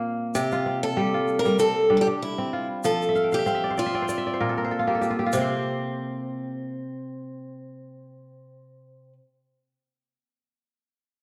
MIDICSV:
0, 0, Header, 1, 4, 480
1, 0, Start_track
1, 0, Tempo, 623701
1, 265, Time_signature, 4, 2, 24, 8
1, 8639, End_track
2, 0, Start_track
2, 0, Title_t, "Kora"
2, 0, Program_c, 0, 46
2, 0, Note_on_c, 0, 46, 77
2, 0, Note_on_c, 0, 58, 68
2, 0, Note_on_c, 0, 60, 68
2, 0, Note_on_c, 0, 70, 76
2, 0, Note_on_c, 0, 72, 71
2, 0, Note_on_c, 0, 77, 66
2, 269, Note_on_c, 0, 48, 93
2, 288, Note_off_c, 0, 70, 0
2, 303, Note_off_c, 0, 46, 0
2, 403, Note_on_c, 0, 65, 75
2, 449, Note_off_c, 0, 77, 0
2, 465, Note_off_c, 0, 72, 0
2, 505, Note_off_c, 0, 60, 0
2, 508, Note_on_c, 0, 60, 55
2, 744, Note_on_c, 0, 55, 98
2, 745, Note_on_c, 0, 67, 76
2, 875, Note_off_c, 0, 65, 0
2, 878, Note_on_c, 0, 65, 63
2, 1108, Note_off_c, 0, 55, 0
2, 1118, Note_on_c, 0, 55, 75
2, 1220, Note_off_c, 0, 60, 0
2, 1223, Note_on_c, 0, 60, 72
2, 1402, Note_off_c, 0, 58, 0
2, 1452, Note_off_c, 0, 55, 0
2, 1460, Note_on_c, 0, 62, 69
2, 1461, Note_on_c, 0, 55, 83
2, 1594, Note_off_c, 0, 67, 0
2, 1597, Note_on_c, 0, 67, 69
2, 1831, Note_off_c, 0, 60, 0
2, 1834, Note_on_c, 0, 60, 77
2, 1944, Note_off_c, 0, 65, 0
2, 1947, Note_on_c, 0, 65, 63
2, 2070, Note_off_c, 0, 48, 0
2, 2188, Note_on_c, 0, 53, 85
2, 2221, Note_off_c, 0, 55, 0
2, 2376, Note_on_c, 0, 76, 82
2, 2422, Note_off_c, 0, 65, 0
2, 2427, Note_on_c, 0, 77, 63
2, 2493, Note_on_c, 0, 79, 61
2, 2554, Note_off_c, 0, 77, 0
2, 2557, Note_on_c, 0, 77, 72
2, 2603, Note_off_c, 0, 76, 0
2, 2607, Note_on_c, 0, 76, 65
2, 2661, Note_off_c, 0, 60, 0
2, 2661, Note_off_c, 0, 77, 0
2, 2664, Note_on_c, 0, 60, 91
2, 2664, Note_on_c, 0, 77, 71
2, 2684, Note_off_c, 0, 67, 0
2, 2727, Note_off_c, 0, 76, 0
2, 2730, Note_on_c, 0, 76, 73
2, 2753, Note_off_c, 0, 62, 0
2, 2799, Note_on_c, 0, 74, 70
2, 2851, Note_on_c, 0, 72, 68
2, 2902, Note_off_c, 0, 74, 0
2, 2905, Note_on_c, 0, 74, 71
2, 2969, Note_off_c, 0, 76, 0
2, 2972, Note_on_c, 0, 76, 74
2, 3019, Note_off_c, 0, 77, 0
2, 3032, Note_off_c, 0, 60, 0
2, 3034, Note_off_c, 0, 74, 0
2, 3035, Note_on_c, 0, 60, 75
2, 3037, Note_on_c, 0, 74, 68
2, 3092, Note_off_c, 0, 72, 0
2, 3095, Note_on_c, 0, 72, 67
2, 3142, Note_off_c, 0, 74, 0
2, 3145, Note_on_c, 0, 74, 74
2, 3180, Note_off_c, 0, 53, 0
2, 3210, Note_off_c, 0, 79, 0
2, 3212, Note_off_c, 0, 76, 0
2, 3215, Note_on_c, 0, 76, 73
2, 3280, Note_off_c, 0, 74, 0
2, 3283, Note_on_c, 0, 74, 70
2, 3334, Note_off_c, 0, 72, 0
2, 3337, Note_on_c, 0, 72, 80
2, 3390, Note_on_c, 0, 46, 83
2, 3390, Note_on_c, 0, 70, 70
2, 3457, Note_on_c, 0, 69, 72
2, 3518, Note_off_c, 0, 70, 0
2, 3521, Note_on_c, 0, 70, 69
2, 3572, Note_off_c, 0, 72, 0
2, 3575, Note_on_c, 0, 72, 74
2, 3623, Note_off_c, 0, 69, 0
2, 3626, Note_on_c, 0, 69, 72
2, 3673, Note_off_c, 0, 70, 0
2, 3689, Note_on_c, 0, 65, 76
2, 3735, Note_off_c, 0, 76, 0
2, 3751, Note_on_c, 0, 58, 71
2, 3753, Note_on_c, 0, 67, 62
2, 3797, Note_off_c, 0, 69, 0
2, 3808, Note_on_c, 0, 69, 69
2, 3856, Note_off_c, 0, 67, 0
2, 3859, Note_on_c, 0, 67, 73
2, 3924, Note_off_c, 0, 65, 0
2, 3928, Note_on_c, 0, 65, 71
2, 3991, Note_off_c, 0, 67, 0
2, 3994, Note_on_c, 0, 67, 79
2, 4047, Note_off_c, 0, 65, 0
2, 4051, Note_on_c, 0, 65, 77
2, 4105, Note_on_c, 0, 48, 73
2, 4133, Note_off_c, 0, 60, 0
2, 4136, Note_off_c, 0, 74, 0
2, 4136, Note_on_c, 0, 60, 76
2, 4140, Note_off_c, 0, 46, 0
2, 4163, Note_off_c, 0, 72, 0
2, 4166, Note_on_c, 0, 72, 78
2, 4822, Note_off_c, 0, 69, 0
2, 5081, Note_off_c, 0, 67, 0
2, 5215, Note_off_c, 0, 65, 0
2, 5235, Note_off_c, 0, 58, 0
2, 7059, Note_off_c, 0, 48, 0
2, 7090, Note_off_c, 0, 60, 0
2, 7120, Note_off_c, 0, 72, 0
2, 8639, End_track
3, 0, Start_track
3, 0, Title_t, "Steel-string acoustic guitar"
3, 0, Program_c, 1, 25
3, 269, Note_on_c, 1, 67, 97
3, 636, Note_off_c, 1, 67, 0
3, 639, Note_on_c, 1, 69, 107
3, 1068, Note_off_c, 1, 69, 0
3, 1071, Note_on_c, 1, 70, 99
3, 1224, Note_off_c, 1, 70, 0
3, 1227, Note_on_c, 1, 69, 103
3, 1506, Note_off_c, 1, 69, 0
3, 1515, Note_on_c, 1, 69, 66
3, 1545, Note_off_c, 1, 69, 0
3, 1548, Note_on_c, 1, 67, 100
3, 1590, Note_off_c, 1, 67, 0
3, 1712, Note_on_c, 1, 64, 76
3, 2054, Note_off_c, 1, 64, 0
3, 2194, Note_on_c, 1, 69, 95
3, 2535, Note_off_c, 1, 69, 0
3, 2571, Note_on_c, 1, 67, 94
3, 2913, Note_off_c, 1, 67, 0
3, 2916, Note_on_c, 1, 65, 77
3, 3838, Note_off_c, 1, 65, 0
3, 4100, Note_on_c, 1, 60, 81
3, 7024, Note_off_c, 1, 60, 0
3, 8639, End_track
4, 0, Start_track
4, 0, Title_t, "Drums"
4, 268, Note_on_c, 9, 82, 59
4, 344, Note_off_c, 9, 82, 0
4, 394, Note_on_c, 9, 82, 20
4, 471, Note_off_c, 9, 82, 0
4, 982, Note_on_c, 9, 82, 20
4, 1059, Note_off_c, 9, 82, 0
4, 1116, Note_on_c, 9, 82, 20
4, 1192, Note_off_c, 9, 82, 0
4, 1223, Note_on_c, 9, 82, 61
4, 1300, Note_off_c, 9, 82, 0
4, 2184, Note_on_c, 9, 82, 65
4, 2261, Note_off_c, 9, 82, 0
4, 2321, Note_on_c, 9, 82, 21
4, 2398, Note_off_c, 9, 82, 0
4, 2425, Note_on_c, 9, 82, 20
4, 2502, Note_off_c, 9, 82, 0
4, 2553, Note_on_c, 9, 82, 20
4, 2630, Note_off_c, 9, 82, 0
4, 2664, Note_on_c, 9, 82, 23
4, 2741, Note_off_c, 9, 82, 0
4, 2906, Note_on_c, 9, 82, 21
4, 2983, Note_off_c, 9, 82, 0
4, 3145, Note_on_c, 9, 82, 66
4, 3222, Note_off_c, 9, 82, 0
4, 3866, Note_on_c, 9, 82, 23
4, 3943, Note_off_c, 9, 82, 0
4, 4098, Note_on_c, 9, 82, 80
4, 4175, Note_off_c, 9, 82, 0
4, 8639, End_track
0, 0, End_of_file